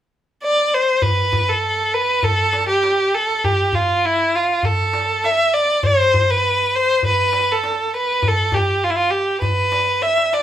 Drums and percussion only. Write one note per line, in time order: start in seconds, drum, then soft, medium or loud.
1.02 darbuka dum medium
1.18 darbuka ka soft
1.33 darbuka dum medium
1.49 darbuka ka soft
1.63 darbuka ka soft
2.08 darbuka ka soft
2.23 darbuka dum medium
2.53 darbuka tek medium
2.83 darbuka tek medium
2.99 darbuka ka soft
3.29 darbuka ka soft
3.44 darbuka dum medium
3.59 darbuka ka soft
3.73 darbuka dum medium
4.03 darbuka ka soft
4.48 darbuka ka soft
4.63 darbuka dum medium
4.79 darbuka ka soft
4.93 darbuka tek medium
5.24 darbuka tek medium
5.39 darbuka ka soft
5.69 darbuka ka soft
5.83 darbuka dum medium
5.98 darbuka ka soft
6.14 darbuka dum medium
6.29 darbuka ka soft
6.44 darbuka ka soft
6.88 darbuka ka soft
7.03 darbuka dum medium
7.18 darbuka ka soft
7.33 darbuka tek medium
7.64 darbuka tek medium
7.79 darbuka ka soft
8.09 darbuka ka soft
8.23 darbuka dum medium
8.52 darbuka dum medium
8.67 darbuka ka soft
9.13 darbuka ka soft
9.27 darbuka ka soft
9.42 darbuka dum medium
9.72 darbuka tek medium
10.02 darbuka tek soft
10.18 darbuka ka medium
10.33 darbuka tek medium